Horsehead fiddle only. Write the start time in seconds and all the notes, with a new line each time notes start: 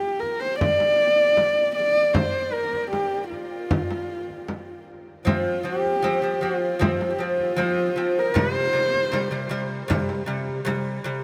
Already playing: G4
0.20 A#4
0.40 C5
0.60 D5
1.76 D5
2.13 C5
2.53 A#4
2.91 G4
3.30 F4
5.26 F4
5.65 G4
6.44 F4
7.13 G4
7.23 F4
8.19 A#4
8.38 C5